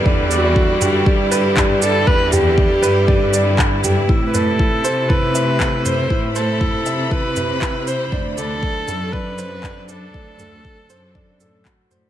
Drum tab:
SH |-x-x-x-x|-x-x-x-x|-x-x-x-x|-x-x-x-x|
CP |------x-|------x-|------x-|------x-|
T2 |o--o--o-|-o--o--o|-o--o--o|--o--o--|
BD |o-o-o-o-|o-o-o-o-|o-o-o-o-|o-o-o-o-|

SH |-x-x-x-x|-x-x-x-x|
CP |------x-|------x-|
T2 |o--o--o-|-o--o--o|
BD |o-o-o-o-|o-o-o-o-|